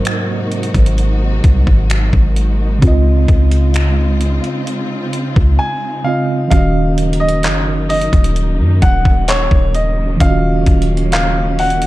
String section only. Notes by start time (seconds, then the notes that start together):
Already playing: C3 G#3 A#3 D#4 F#4
2.82 C#3 C4 F4
6.51 C#3 F#3 A#3 D#4
10.20 C#4